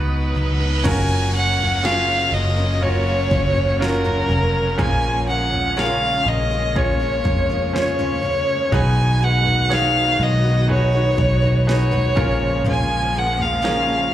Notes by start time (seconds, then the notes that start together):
Already playing: C#2 B2 F#3 B3 D#4 F#4 B4 C#5 D#5 F#5 D#6, reverse cymbal
0.35 C#2 F#3 B3 D#4 B4
0.60 B3 D#4 B4
0.84 F#1 F#2 C#3 F#3 A#3 C#4 F4 F#4 A#4 G#5, kick, floor tom, crash, downlifter
1.33 F#3 C#4 F4 A#4 F#5
1.59 F#3 C#4 F4 A#4, floor tom
1.83 F#2 C#3 F#3 C#4 F4 F#4 G#4 A#4 F5, snare
2.32 F#1 F#3 C#4 F4 A#4 D#5
2.57 F#3 C#4 F4 A#4
2.81 C#4 F4 F#4 A#4 C#5, floor tom
3.07 F#3 C#4 F4 A#4
3.30 F#1 F#3 C#4 F4 A#4, kick
3.55 F#3 C#4 F4 A#4, floor tom
3.79 C#4 F4 F#4 A#4, snare
4.04 F#2 C#3 F#3 C#4 F4 A#4, floor tom
4.29 F1 F#3 C#4 F4 A#4, floor tom
4.78 A#1 A#2 F3 G#3 A#3 C#4 F4 G#4 A#4 G#5, kick, floor tom
5.27 G#3 C#4 F4 A#4 F#5
5.52 G#3 C#4 F4 A#4, floor tom
5.76 A#2 F3 G#3 C#4 F4 G#4 A#4 F5, snare
6.26 A#1 G#3 C#4 F4 A#4 D#5
6.51 G#3 C#4 F4 A#4
6.75 C#4 F4 G#4 C#5, kick, floor tom
7.00 G#3 C#4 F4 A#4
7.24 F2 G#3 C#4 F4 A#4, kick
7.50 G#3 C#4 F4 A#4, floor tom
7.73 C#4 F4 G#4 C5 C#5, snare
7.81 C#5
7.99 A#2 F3 G#3 C#4 F4 A#4, floor tom
8.22 G#3 C#4 F4 A#4, floor tom
8.72 B1 B2 D#3 G#3 B3 D#4 F#4 G#4 B4 G#5, kick, floor tom
9.21 G#3 D#4 F#4 B4 F#5
9.45 D#4 F#4 B4, floor tom
9.69 B2 G#3 D#4 F#4 G#4 B4 C#5, snare
9.73 F5
10.19 B1 G#3 D#4 F#4 B4
10.23 D#5
10.43 D#4 F#4 B4
10.68 D#4 F#4 G#4 B4 C#5, floor tom
10.93 D#4 F#4 B4
11.17 B1 G#3 D#4 F#4 B4, kick
11.42 D#4 F#4 B4, floor tom
11.67 D#4 F#4 G#4 B4 C#5, snare
11.91 B2 G#3 D#4 F#4 B4, floor tom
12.15 A#1 A#2 C#3 F3 G#3 A#3 C#4 F4 G#4 A#4, kick, floor tom
12.64 A#1 A#2 F3 G#3 C#4 F4 A#4, floor tom
12.70 G#5
13.13 G#3 C#4 F4 A#4
13.19 F#5
13.37 G#3 C#4 F4 A#4, floor tom
13.42 F5
13.62 A#2 F3 G#3 C#4 F4 G#4 A#4, snare
13.87 G#3 C#4 F4 A#4